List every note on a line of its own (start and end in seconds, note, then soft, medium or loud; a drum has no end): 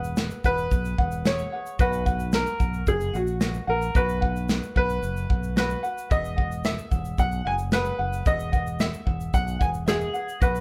0.00 0.28 E1 medium
0.00 0.46 G#4 soft
0.00 0.44 B4 medium
0.00 0.46 B4 medium
0.00 0.44 F#5 medium
0.04 shaker medium
0.16 snare loud
0.16 shaker medium
0.30 shaker soft
0.44 0.67 E1 loud
0.44 1.00 G#4 soft
0.44 1.28 B4 loud
0.44 1.00 B4 medium
0.44 0.98 F#5 medium
0.44 kick medium
0.44 shaker medium
0.58 shaker soft
0.71 0.94 B1 loud
0.71 kick medium
0.71 shaker medium
0.85 shaker soft
0.98 1.43 E1 medium
0.98 1.25 G#4 soft
0.98 1.26 B4 soft
0.98 1.25 F#5 medium
0.98 kick loud
1.12 shaker medium
1.25 1.53 G#4 medium
1.25 1.53 B4 medium
1.25 1.82 C#5 medium
1.25 1.52 E5 medium
1.25 1.51 F#5 medium
1.25 snare loud
1.25 shaker medium
1.39 shaker soft
1.52 1.80 G#4 soft
1.52 1.79 B4 medium
1.52 1.79 F#5 medium
1.66 shaker medium
1.79 2.43 B1 loud
1.79 2.07 F#4 medium
1.79 2.35 B4 medium
1.79 2.06 B4 medium
1.79 2.06 D#5 medium
1.79 2.05 F#5 medium
1.79 kick loud
1.79 shaker medium
1.93 shaker medium
2.06 2.61 F#4 soft
2.06 2.61 B4 medium
2.06 2.59 F#5 medium
2.06 kick medium
2.06 shaker soft
2.20 shaker medium
2.32 2.84 A#4 medium
2.32 snare loud
2.32 shaker medium
2.46 shaker medium
2.59 2.82 B1 medium
2.59 3.14 F#4 medium
2.59 3.13 F#5 medium
2.59 kick medium
2.59 shaker soft
2.74 shaker soft
2.87 3.09 F#1 loud
2.87 3.16 G#4 medium
2.87 kick medium
2.87 shaker medium
3.01 shaker soft
3.13 3.58 A#1 medium
3.13 3.65 F#4 medium
3.13 3.40 F#4 soft
3.13 3.40 F#5 medium
3.13 shaker medium
3.27 shaker medium
3.40 3.68 F#4 medium
3.40 3.67 B4 medium
3.40 3.68 D#5 medium
3.40 3.66 F#5 medium
3.40 snare loud
3.40 shaker medium
3.54 shaker soft
3.67 3.90 A#1 medium
3.67 3.94 F#4 soft
3.67 3.97 A#4 medium
3.67 3.94 B4 medium
3.67 3.95 F#5 medium
3.82 shaker medium
3.94 4.59 B1 loud
3.94 4.22 F#4 medium
3.94 4.21 B4 medium
3.94 4.76 B4 loud
3.94 4.22 D#5 medium
3.94 4.20 F#5 medium
3.94 kick loud
3.94 shaker medium
4.09 shaker medium
4.21 4.77 F#4 soft
4.21 4.77 B4 soft
4.21 4.75 F#5 medium
4.21 kick medium
4.36 shaker medium
4.49 snare loud
4.49 shaker medium
4.63 shaker soft
4.75 4.98 B1 medium
4.75 5.31 F#4 soft
4.75 5.57 B4 loud
4.75 5.29 F#5 medium
4.75 kick medium
4.90 shaker soft
5.03 5.25 F#1 medium
5.03 shaker medium
5.17 shaker soft
5.29 5.74 B1 medium
5.29 5.56 F#4 soft
5.29 5.56 F#5 soft
5.29 kick loud
5.43 shaker medium
5.56 5.84 F#4 medium
5.56 6.13 B4 medium
5.56 5.83 B4 medium
5.56 5.83 D#5 medium
5.56 5.82 F#5 medium
5.56 snare loud
5.56 shaker medium
5.70 shaker soft
5.83 6.10 F#4 soft
5.83 6.10 B4 soft
5.83 6.10 F#5 medium
5.83 shaker medium
5.98 shaker medium
6.10 6.75 E1 loud
6.10 6.38 G#4 medium
6.10 6.37 B4 medium
6.10 6.67 D#5 loud
6.10 6.37 E5 medium
6.10 6.35 F#5 medium
6.10 kick loud
6.10 shaker medium
6.25 shaker medium
6.37 6.92 G#4 soft
6.37 6.93 B4 medium
6.37 6.91 F#5 medium
6.37 kick medium
6.52 shaker medium
6.64 7.21 E5 medium
6.64 snare loud
6.64 shaker medium
6.78 shaker soft
6.91 7.14 E1 medium
6.91 7.46 G#4 soft
6.91 7.45 F#5 medium
6.91 kick medium
6.91 shaker medium
7.05 shaker soft
7.18 7.40 B1 loud
7.18 7.47 F#5 loud
7.18 kick medium
7.18 shaker medium
7.32 shaker soft
7.45 7.90 F#1 medium
7.45 7.71 G#4 soft
7.45 7.72 F#5 soft
7.45 7.53 G#5 loud
7.58 shaker medium
7.72 7.99 G#4 medium
7.72 8.28 B4 loud
7.72 7.99 B4 medium
7.72 7.99 E5 medium
7.72 7.97 F#5 medium
7.72 snare loud
7.72 shaker medium
7.85 shaker soft
7.99 8.21 F#1 medium
7.99 8.25 G#4 soft
7.99 8.26 B4 soft
7.99 8.26 F#5 medium
8.13 shaker medium
8.26 8.90 E1 loud
8.26 8.53 G#4 medium
8.26 8.53 B4 medium
8.26 8.82 D#5 loud
8.26 8.53 E5 medium
8.26 8.51 F#5 medium
8.26 kick loud
8.26 shaker medium
8.40 shaker medium
8.52 9.07 G#4 soft
8.52 9.07 B4 medium
8.52 9.06 F#5 medium
8.52 kick medium
8.52 shaker soft
8.67 shaker medium
8.79 9.30 E5 medium
8.79 snare loud
8.79 shaker medium
8.94 shaker soft
9.06 9.29 E1 medium
9.06 9.61 G#4 soft
9.06 9.59 F#5 medium
9.06 kick medium
9.21 shaker soft
9.34 9.56 B1 loud
9.34 9.59 F#5 loud
9.34 kick medium
9.34 shaker medium
9.48 shaker soft
9.59 10.05 E1 medium
9.59 9.86 G#4 soft
9.59 9.87 B4 medium
9.59 9.86 F#5 medium
9.59 9.67 G#5 medium
9.59 kick loud
9.59 shaker medium
9.74 shaker medium
9.86 10.15 G#4 medium
9.86 10.44 G#4 loud
9.86 10.14 B4 medium
9.86 10.13 E5 medium
9.86 10.12 F#5 medium
9.86 snare loud
9.86 shaker medium
10.01 shaker soft
10.13 10.41 G#4 soft
10.13 10.41 B4 soft
10.13 10.41 F#5 medium
10.13 shaker soft
10.29 shaker medium
10.40 10.61 B1 loud
10.40 10.61 F#4 medium
10.40 10.61 B4 medium
10.40 10.61 D#5 medium
10.40 10.61 F#5 medium
10.40 kick loud
10.40 shaker medium
10.55 shaker medium